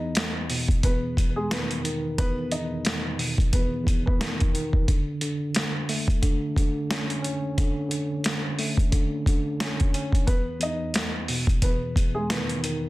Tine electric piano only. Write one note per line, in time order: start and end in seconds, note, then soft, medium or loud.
0.00 0.85 E2 medium
0.50 2.18 B2 medium
0.85 1.17 E2 medium
1.18 2.17 E2 medium
1.51 1.83 D#3 medium
1.84 3.53 D#3 medium
2.18 2.50 E2 medium
2.51 3.53 E2 medium
3.17 4.87 B2 medium
3.55 3.83 E2 medium
3.84 4.87 E2 medium
4.19 4.52 D#3 medium
4.54 4.88 D#3 medium
4.88 5.20 D3 medium
5.21 6.20 D3 medium
5.89 7.58 A3 medium
6.22 6.56 D3 medium
6.57 7.57 D3 medium
6.91 7.21 C#4 medium
7.22 8.92 C#4 medium
7.58 7.88 D3 medium
7.89 8.90 D3 medium
8.59 10.27 A3 medium
8.91 9.27 D3 medium
9.28 10.28 D3 medium
9.60 9.93 C#4 medium
9.95 10.28 C#4 medium
10.25 10.58 E2 medium
10.59 11.63 E2 medium
11.28 12.89 B2 medium
11.64 11.95 E2 medium
11.96 12.89 E2 medium
12.30 12.62 D#3 medium
12.63 12.89 D#3 medium